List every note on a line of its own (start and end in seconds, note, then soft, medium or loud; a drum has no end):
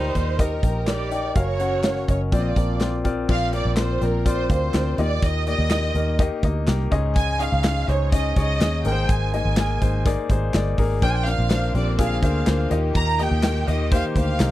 0.00 0.12 D2 medium
0.00 0.11 A#2 medium
0.00 0.61 G3 medium
0.00 0.15 D#4 medium
0.00 0.61 D#4 medium
0.00 0.15 G4 medium
0.00 0.15 A#4 medium
0.00 0.40 C5 medium
0.00 0.64 G5 medium
0.00 snare soft
0.15 0.60 D#2 medium
0.15 0.33 D#4 medium
0.15 0.33 G4 medium
0.15 0.34 A#4 medium
0.15 0.34 C5 medium
0.15 kick medium
0.15 closed hi-hat soft
0.39 0.57 D#4 medium
0.39 0.57 G4 medium
0.39 0.58 A#4 medium
0.39 0.88 A#4 medium
0.39 0.58 D#5 medium
0.39 kick medium
0.39 closed hi-hat medium
0.63 1.32 A#1 medium
0.63 0.82 D#4 medium
0.63 0.82 G4 medium
0.63 0.82 A#4 medium
0.63 0.82 G5 medium
0.63 kick medium
0.63 closed hi-hat medium
0.87 1.11 G3 medium
0.87 1.06 D#4 medium
0.87 1.06 G4 medium
0.87 1.11 G4 medium
0.87 1.06 A#4 medium
0.87 1.36 D5 medium
0.87 1.06 G5 medium
0.87 snare medium
0.87 clap medium
0.87 closed hi-hat medium
1.11 1.30 D#4 medium
1.11 1.30 G4 medium
1.11 1.30 A#4 medium
1.11 1.30 G5 medium
1.11 closed hi-hat medium
1.35 2.05 F#1 medium
1.35 2.04 C#3 medium
1.35 2.07 F#3 medium
1.35 1.54 C#4 medium
1.35 1.54 F#4 medium
1.35 2.07 F#4 medium
1.35 1.54 A#4 medium
1.35 2.05 C#5 medium
1.35 1.54 F5 medium
1.35 kick loud
1.35 closed hi-hat medium
1.60 1.78 C#4 medium
1.60 1.78 F#4 medium
1.60 1.78 A#4 medium
1.60 1.79 F#5 medium
1.60 closed hi-hat medium
1.83 2.02 C#4 medium
1.83 2.02 F#4 medium
1.83 2.03 A#4 medium
1.83 2.03 F5 medium
1.83 snare loud
1.83 clap medium
1.83 closed hi-hat medium
1.96 snare soft
2.08 2.31 F#1 medium
2.08 2.26 C#4 medium
2.08 2.27 F#4 medium
2.08 2.27 A#4 medium
2.08 2.20 C#5 medium
2.08 2.27 D#5 medium
2.08 kick medium
2.08 closed hi-hat medium
2.32 2.55 A#1 medium
2.32 3.01 A#2 soft
2.32 3.01 F3 soft
2.32 3.04 F3 medium
2.32 2.51 C4 medium
2.32 2.51 F4 medium
2.32 3.04 F4 medium
2.32 2.51 A#4 medium
2.32 2.51 D5 medium
2.32 2.39 D5 medium
2.32 kick loud
2.32 closed hi-hat medium
2.41 2.47 D#5 medium
2.47 2.81 D5 medium
2.56 3.25 A#1 medium
2.56 2.75 C4 medium
2.56 2.75 F4 medium
2.56 2.75 A#4 medium
2.56 2.75 D5 medium
2.56 kick medium
2.56 closed hi-hat medium
2.80 2.99 C4 medium
2.80 2.99 F4 medium
2.80 2.99 A#4 medium
2.80 2.99 D5 medium
2.80 snare loud
2.80 clap medium
2.80 closed hi-hat medium
3.04 3.23 C4 medium
3.04 3.23 F4 medium
3.04 3.23 A#4 medium
3.04 3.23 D5 medium
3.04 kick medium
3.04 closed hi-hat medium
3.28 3.63 A#1 medium
3.28 3.98 A#2 medium
3.28 3.98 F3 medium
3.28 3.47 C4 medium
3.28 3.47 F4 medium
3.28 3.47 A#4 medium
3.28 3.48 D5 medium
3.28 3.53 F5 loud
3.28 kick loud
3.28 crash medium
3.52 3.71 C4 medium
3.52 3.71 F4 medium
3.52 3.72 A#4 medium
3.52 3.77 D5 medium
3.52 3.72 F5 medium
3.52 closed hi-hat medium
3.65 3.99 A#1 medium
3.76 3.95 C4 medium
3.76 3.96 F4 medium
3.76 3.96 A#4 medium
3.76 4.01 C5 medium
3.76 3.96 D5 medium
3.76 snare loud
3.76 clap medium
3.76 closed hi-hat medium
4.01 4.47 A#1 loud
4.01 4.20 C4 medium
4.01 4.20 F4 medium
4.01 4.20 A#4 medium
4.01 4.27 A#4 medium
4.01 4.20 D5 medium
4.01 closed hi-hat medium
4.25 4.44 C4 medium
4.25 4.44 F4 medium
4.25 4.44 A#4 medium
4.25 4.50 C5 medium
4.25 4.44 D5 medium
4.25 kick medium
4.25 closed hi-hat medium
4.50 4.72 D2 medium
4.50 4.68 C4 medium
4.50 4.68 F4 medium
4.50 4.68 A#4 medium
4.50 4.96 C5 medium
4.50 4.69 F5 medium
4.50 kick medium
4.50 closed hi-hat medium
4.74 4.97 D2 loud
4.74 4.93 C4 medium
4.74 4.93 F4 medium
4.74 4.93 A#4 medium
4.74 4.93 D5 medium
4.74 snare loud
4.74 clap medium
4.74 closed hi-hat medium
4.98 5.21 D#2 medium
4.98 5.67 A#2 medium
4.98 5.37 A#3 medium
4.98 5.37 D#4 medium
4.98 5.37 G4 medium
4.98 5.24 D5 medium
4.98 5.37 D#5 medium
4.98 closed hi-hat medium
5.22 5.56 D#2 medium
5.22 5.48 D#5 loud
5.22 kick medium
5.22 closed hi-hat medium
5.46 5.65 A#3 medium
5.46 5.65 D#4 medium
5.46 5.65 G4 medium
5.46 5.65 D5 medium
5.46 6.16 D#5 medium
5.46 closed hi-hat medium
5.59 5.92 D#2 medium
5.70 5.89 A#3 medium
5.70 5.89 D#4 medium
5.70 5.90 G4 medium
5.70 5.90 D#5 medium
5.70 snare loud
5.70 clap medium
5.70 closed hi-hat medium
5.83 snare soft
5.95 6.29 D#2 loud
5.95 6.13 A#3 medium
5.95 6.14 D#4 medium
5.95 6.14 G4 medium
5.95 6.14 A#4 medium
5.95 closed hi-hat medium
6.19 6.37 A#3 loud
6.19 6.38 D#4 medium
6.19 6.38 G4 medium
6.19 6.38 D#5 loud
6.19 kick loud
6.19 closed hi-hat medium
6.43 6.66 D2 medium
6.43 6.62 A#3 medium
6.43 6.62 D#4 medium
6.43 6.62 G4 medium
6.43 6.62 D#5 medium
6.43 kick medium
6.43 closed hi-hat medium
6.67 6.90 C2 loud
6.67 6.86 A#3 medium
6.67 6.86 D#4 medium
6.67 6.86 G4 medium
6.67 6.86 A#4 medium
6.67 snare loud
6.67 clap medium
6.67 closed hi-hat medium
6.91 7.48 C#2 medium
6.91 7.60 G#2 medium
6.91 7.30 C#4 medium
6.91 7.30 D#4 medium
6.91 7.30 G#4 medium
6.91 7.31 D#5 medium
6.91 kick medium
6.91 closed hi-hat medium
7.16 7.39 G#5 loud
7.16 kick loud
7.16 closed hi-hat medium
7.39 7.58 C#4 medium
7.39 7.58 D#4 medium
7.39 7.58 G#4 medium
7.39 7.59 D#5 medium
7.39 7.89 F5 loud
7.39 closed hi-hat medium
7.52 7.86 C#2 medium
7.64 7.82 C#4 medium
7.64 7.82 D#4 medium
7.64 7.83 G#4 medium
7.64 7.83 D#5 medium
7.64 snare loud
7.64 clap medium
7.64 closed hi-hat medium
7.76 snare soft
7.88 8.33 C#2 loud
7.88 8.06 C#4 medium
7.88 8.07 D#4 medium
7.88 8.07 G#4 medium
7.88 8.07 C5 medium
7.88 8.13 C#5 medium
7.88 closed hi-hat medium
8.12 8.31 C#4 medium
8.12 8.31 D#4 medium
8.12 8.31 G#4 medium
8.12 8.31 D#5 medium
8.12 8.36 D#5 medium
8.12 kick loud
8.12 closed hi-hat medium
8.36 8.59 C#2 medium
8.36 8.55 C#4 medium
8.36 8.55 D#4 medium
8.36 8.55 G#4 medium
8.36 8.55 C#5 medium
8.36 8.83 D#5 medium
8.36 kick medium
8.36 closed hi-hat medium
8.61 8.83 D#2 loud
8.61 8.79 C#4 medium
8.61 8.79 D#4 medium
8.61 8.79 G#4 medium
8.61 8.79 D#5 medium
8.61 snare loud
8.61 clap medium
8.61 closed hi-hat medium
8.85 9.07 G#1 medium
8.85 9.54 G#2 medium
8.85 9.54 D#3 medium
8.85 9.24 A#3 medium
8.85 9.24 D#4 medium
8.85 9.24 G#4 medium
8.85 8.91 A#4 medium
8.85 9.10 G5 medium
8.85 closed hi-hat medium
8.92 9.27 C5 medium
9.09 9.43 G#1 medium
9.09 9.34 G#5 loud
9.09 kick loud
9.09 closed hi-hat medium
9.33 9.51 A#3 medium
9.33 9.52 D#4 medium
9.33 9.52 G#4 medium
9.33 9.52 D#5 medium
9.33 10.03 G#5 medium
9.33 closed hi-hat medium
9.45 9.79 G#1 loud
9.57 9.76 A#3 medium
9.57 9.76 D#4 medium
9.57 9.76 G#4 medium
9.57 9.76 A#4 medium
9.57 snare loud
9.57 clap loud
9.57 closed hi-hat medium
9.81 10.15 G#1 medium
9.81 10.00 A#3 medium
9.81 10.00 D#4 medium
9.81 10.00 G#4 medium
9.81 10.00 C5 medium
9.81 kick medium
9.81 closed hi-hat medium
10.06 10.24 A#3 loud
10.06 10.24 D#4 medium
10.06 10.24 G#4 medium
10.06 10.25 D5 loud
10.06 kick loud
10.06 closed hi-hat medium
10.30 10.52 G#1 medium
10.30 10.48 A#3 medium
10.30 10.48 D#4 medium
10.30 10.49 G#4 medium
10.30 10.49 C5 medium
10.30 kick medium
10.30 closed hi-hat medium
10.54 10.76 G1 loud
10.54 10.73 A#3 medium
10.54 10.73 D#4 medium
10.54 10.73 G#4 medium
10.54 10.73 D5 loud
10.54 snare loud
10.54 clap medium
10.54 closed hi-hat medium
10.78 11.01 G#1 medium
10.78 10.96 A#3 medium
10.78 10.97 D#4 medium
10.78 10.97 G#4 medium
10.78 10.97 A#4 medium
10.78 kick medium
10.78 open hi-hat medium
11.02 11.36 A#1 medium
11.02 11.71 A#2 medium
11.02 12.70 D3 medium
11.02 11.71 F3 medium
11.02 11.21 A#3 medium
11.02 14.51 A#3 medium
11.02 12.70 C4 medium
11.02 11.21 D4 medium
11.02 11.21 F4 medium
11.02 11.21 C5 medium
11.02 11.08 G5 loud
11.02 kick loud
11.02 closed hi-hat medium
11.09 11.15 G#5 medium
11.15 11.27 G5 loud
11.26 11.44 A#3 medium
11.26 11.45 D4 medium
11.26 11.45 F4 medium
11.26 11.45 A#4 medium
11.26 11.75 F5 loud
11.26 closed hi-hat medium
11.38 11.72 A#1 medium
11.50 11.69 A#3 medium
11.50 11.69 D4 medium
11.50 11.69 F4 medium
11.50 11.69 C5 medium
11.50 snare loud
11.50 clap medium
11.50 closed hi-hat medium
11.63 snare soft
11.74 12.19 A#1 loud
11.74 11.93 A#3 medium
11.74 11.93 D4 medium
11.74 11.93 F4 medium
11.74 11.93 G4 medium
11.74 11.98 D5 medium
11.74 closed hi-hat medium
11.98 12.17 A#3 medium
11.98 12.17 D4 medium
11.98 12.17 F4 medium
11.98 12.17 G#4 medium
11.98 12.22 F5 medium
11.98 kick loud
11.98 closed hi-hat medium
12.22 12.45 D2 medium
12.22 12.41 A#3 medium
12.22 12.41 D4 medium
12.22 12.41 F4 medium
12.22 12.41 C5 medium
12.22 12.69 F5 medium
12.22 kick loud
12.22 closed hi-hat medium
12.46 12.70 D2 loud
12.46 12.65 A#3 medium
12.46 12.65 D4 medium
12.46 12.65 F4 medium
12.46 12.66 C5 medium
12.46 snare loud
12.46 clap medium
12.46 closed hi-hat medium
12.70 12.94 D#2 medium
12.70 13.39 A#2 medium
12.70 14.51 D#3 medium
12.70 13.09 A#3 medium
12.70 13.10 D#4 medium
12.70 13.10 G4 medium
12.70 14.51 G4 medium
12.70 13.10 D#5 medium
12.70 closed hi-hat medium
12.95 13.29 D#2 medium
12.95 13.18 A#5 loud
12.95 kick loud
12.95 closed hi-hat medium
13.18 13.37 A#3 medium
13.18 13.37 D#4 medium
13.18 13.38 G4 medium
13.18 13.38 D#5 medium
13.18 13.68 G5 loud
13.18 closed hi-hat medium
13.31 13.65 D#2 loud
13.43 13.62 A#3 medium
13.43 13.62 D#4 medium
13.43 13.62 G4 medium
13.43 13.62 D#5 medium
13.43 snare loud
13.43 clap medium
13.43 closed hi-hat medium
13.56 snare soft
13.67 14.01 D#2 loud
13.67 13.86 A#3 medium
13.67 13.86 D#4 medium
13.67 13.86 G4 medium
13.67 13.86 D#5 medium
13.67 13.93 D#5 medium
13.67 closed hi-hat medium
13.91 14.10 A#3 medium
13.91 14.10 D#4 medium
13.91 14.10 G4 medium
13.91 14.10 C5 loud
13.91 14.04 F5 loud
13.91 kick loud
13.91 closed hi-hat medium
14.15 14.38 D2 medium
14.15 14.34 A#3 medium
14.15 14.34 D#4 medium
14.15 14.34 G4 medium
14.15 14.34 C5 medium
14.15 14.51 F5 medium
14.15 kick medium
14.15 closed hi-hat medium
14.39 14.51 C2 loud
14.39 14.51 A#3 medium
14.39 14.51 D#4 medium
14.39 14.51 G4 medium
14.39 14.51 A#4 medium
14.39 snare loud
14.39 clap medium
14.39 closed hi-hat medium